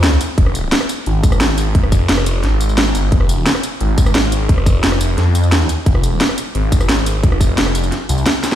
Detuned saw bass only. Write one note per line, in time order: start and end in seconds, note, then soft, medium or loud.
0.00 0.19 F2 loud
0.38 0.71 F1 loud
1.06 1.91 G#1 loud
1.92 2.08 F1 loud
2.09 2.42 F1 loud
2.44 2.94 G#1 loud
2.95 3.11 G1 loud
3.12 3.45 F1 loud
3.81 4.65 G#1 loud
4.66 4.82 F1 loud
4.83 5.16 F1 loud
5.18 5.68 F2 loud
5.86 6.19 F1 loud
6.55 7.39 G#1 loud
7.41 7.56 F1 loud
7.58 7.91 F1 medium
8.09 8.25 C2 loud